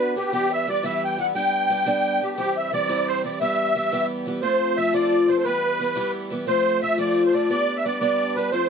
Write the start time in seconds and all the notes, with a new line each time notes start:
Already playing: B3 D4 F#4 B4
0.15 B3 D4 F#4 G4 B4
0.30 E3 G3 B3 G4
0.50 E5
0.67 E3 G3 B3 G4 D5
0.83 E3 G3 B3 G4 E5
1.04 G5
1.18 E3 G3 B3 G4 F#5
1.35 G3 B3 D4 G4 G5
1.70 G3 B3 D4 G4
1.86 G3 B3 D4 G4
2.21 G3 B3 D4 G4
2.37 C3 E3 G3 C4 G4
2.55 E5
2.72 E3 G3 C4 G4 D5
2.89 C3 E3 G3 C4 G4
3.08 C5
3.24 E3 G3 C4 G4 D5
3.39 E3 G3 B3 G4 E5
3.75 E3 G3 B3 G4
3.92 E3 G3 B3 G4
4.26 E3 G3 B3 G4
4.37 D5
4.42 F3 A3 C4 F4 C5
4.77 F3 A3 C4 F4 E5
4.93 F3 A3 C4 F4 D5
5.28 F3 A3 C4 F4 C5
5.37 A4 C5
5.44 E3 G3 B3 G4 B4
5.79 E3 G3 B3 G4
5.95 E3 G3 B3 G4
6.30 E3 G3 B3 G4
6.46 F3 A3 C4 F4 C5
6.81 F3 A3 C4 F4 E5
6.97 F3 A3 C4 F4 D5
7.24 C5
7.33 F3 A3 C4 F4 D5
7.49 G3 B3 D4 G4 D5
7.76 E5
7.85 G3 B3 D4 G4 D5
8.00 G3 B3 D4 G4 D5
8.35 G3 B3 D4 G4 B4
8.52 F3 A3 C4 F4 C5